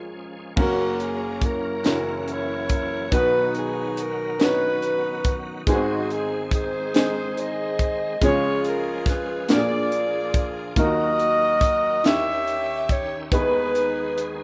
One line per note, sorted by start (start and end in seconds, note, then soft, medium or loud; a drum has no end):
0.00 0.53 C#2 medium
0.00 0.53 C#3 medium
0.00 0.55 F3 medium
0.00 0.55 G#3 soft
0.00 0.59 G#3 medium
0.00 0.55 C#4 medium
0.00 0.57 C#4 medium
0.00 0.15 F4 medium
0.00 0.59 F4 medium
0.00 0.53 G#4 medium
0.00 0.59 G#4 medium
0.00 0.43 A#4 medium
0.56 1.81 F#1 medium
0.56 1.81 F#2 medium
0.56 1.84 F#3 medium
0.56 1.69 A#3 medium
0.56 3.10 A#3 medium
0.56 1.82 A#3 medium
0.56 1.70 C#4 medium
0.56 3.10 C#4 medium
0.56 1.43 C#4 medium
0.56 1.70 F#4 medium
0.56 0.98 F#4 medium
0.56 1.84 A#4 medium
0.56 1.71 A#4 medium
0.56 kick loud
0.56 crash medium
1.00 1.43 G#4 medium
1.00 closed hi-hat soft
1.42 2.66 C#4 medium
1.42 2.28 E4 medium
1.42 2.28 A#4 medium
1.42 kick medium
1.42 closed hi-hat medium
1.83 3.09 F#1 medium
1.83 3.08 F#2 medium
1.83 3.10 E3 medium
1.83 2.97 C#4 medium
1.83 2.97 E4 medium
1.83 5.62 F#4 medium
1.83 2.98 F#4 medium
1.83 2.98 A#4 medium
1.83 snare loud
1.83 closed hi-hat medium
2.28 3.09 E4 medium
2.28 3.09 A#4 medium
2.28 3.14 C#5 medium
2.28 closed hi-hat medium
2.69 kick medium
2.69 closed hi-hat medium
3.11 5.63 B1 medium
3.11 5.63 B2 medium
3.11 8.17 D#3 medium
3.11 5.64 F#3 medium
3.11 4.24 B3 medium
3.11 5.64 B3 medium
3.11 4.24 D#4 medium
3.11 4.36 D#4 medium
3.11 4.25 F#4 medium
3.11 4.36 F#4 medium
3.11 4.25 B4 medium
3.11 3.53 B4 medium
3.11 kick medium
3.11 closed hi-hat medium
3.55 3.99 G#4 medium
3.55 closed hi-hat medium
3.97 closed hi-hat medium
4.02 4.42 A#4 medium
4.38 5.51 B3 medium
4.38 4.46 C#4 soft
4.38 5.52 F#4 medium
4.38 5.53 C#5 medium
4.38 snare loud
4.38 closed hi-hat medium
4.42 5.64 D#4 medium
4.42 5.55 D#4 medium
4.42 5.64 F#4 medium
4.42 5.37 B4 medium
4.82 closed hi-hat medium
5.24 kick medium
5.24 closed hi-hat medium
5.67 8.18 G#1 medium
5.67 8.18 G#2 medium
5.67 6.79 G#3 medium
5.67 9.45 G#3 medium
5.67 5.74 B3 medium
5.67 8.19 C4 medium
5.67 6.92 C4 medium
5.67 6.80 D#4 medium
5.67 6.38 D#4 medium
5.67 10.73 G#4 medium
5.67 6.80 G#4 medium
5.67 kick medium
5.67 closed hi-hat medium
5.72 6.83 C4 medium
5.72 6.09 F#4 medium
6.10 6.42 G#4 medium
6.10 closed hi-hat soft
6.51 7.76 D#4 medium
6.51 7.37 G#4 medium
6.51 kick medium
6.51 closed hi-hat medium
6.56 7.37 C5 medium
6.94 8.06 G#3 medium
6.94 8.07 C4 medium
6.94 8.07 D#4 medium
6.94 8.07 G#4 medium
6.94 snare loud
6.94 closed hi-hat medium
7.37 8.18 G#4 medium
7.37 8.18 C5 medium
7.37 8.23 D#5 medium
7.37 closed hi-hat medium
7.79 kick medium
7.79 closed hi-hat medium
8.21 9.46 C#2 medium
8.21 9.45 C#3 medium
8.21 10.74 F3 medium
8.21 9.34 G#3 medium
8.21 9.48 C#4 medium
8.21 9.34 C#4 medium
8.21 9.35 F4 medium
8.21 9.46 F4 medium
8.21 9.46 G#4 medium
8.21 9.35 G#4 medium
8.21 8.63 C#5 medium
8.21 kick loud
8.21 closed hi-hat medium
8.64 9.05 A#4 medium
8.64 closed hi-hat soft
9.06 9.50 B4 medium
9.06 kick medium
9.06 snare soft
9.06 closed hi-hat medium
9.48 10.73 A#1 medium
9.48 10.73 A#2 medium
9.48 12.01 A#3 medium
9.48 10.61 A#3 medium
9.48 10.75 D4 medium
9.48 10.62 D4 medium
9.48 10.62 F4 medium
9.48 10.73 F4 medium
9.48 9.56 F#4 medium
9.48 10.74 G#4 medium
9.48 snare loud
9.48 closed hi-hat medium
9.52 10.46 D5 medium
9.57 10.66 G#4 medium
9.92 closed hi-hat medium
10.34 kick medium
10.34 closed hi-hat medium
10.76 12.01 D#2 medium
10.76 12.01 D#3 medium
10.76 12.03 F#3 medium
10.76 11.89 A#3 medium
10.76 12.03 D#4 medium
10.76 11.89 D#4 medium
10.76 10.84 F4 medium
10.76 12.01 F#4 medium
10.76 12.03 A#4 medium
10.76 12.01 A#4 medium
10.76 11.90 A#4 medium
10.76 12.02 D#5 loud
10.76 kick loud
10.76 closed hi-hat medium
10.84 11.93 F#4 medium
11.19 closed hi-hat soft
11.61 kick medium
11.61 closed hi-hat medium
12.04 13.28 D#2 medium
12.04 14.43 D#3 medium
12.04 13.28 D#3 medium
12.04 13.31 C#4 medium
12.04 13.16 D#4 medium
12.04 13.17 E4 medium
12.04 13.16 G4 medium
12.04 13.31 G4 medium
12.04 13.17 G4 medium
12.04 12.89 C#5 medium
12.04 13.18 C#5 medium
12.04 13.31 E5 medium
12.04 12.90 E5 loud
12.04 snare loud
12.04 closed hi-hat medium
12.47 closed hi-hat medium
12.89 13.20 C#5 medium
12.89 kick medium
12.89 closed hi-hat medium
13.31 14.43 D#2 medium
13.31 14.43 D#3 medium
13.31 14.43 G#3 medium
13.31 14.43 B3 medium
13.31 14.43 D#4 medium
13.31 14.43 G#4 medium
13.31 14.28 B4 medium
13.31 14.43 B4 medium
13.31 kick loud
13.31 closed hi-hat medium
13.75 closed hi-hat medium
14.18 closed hi-hat medium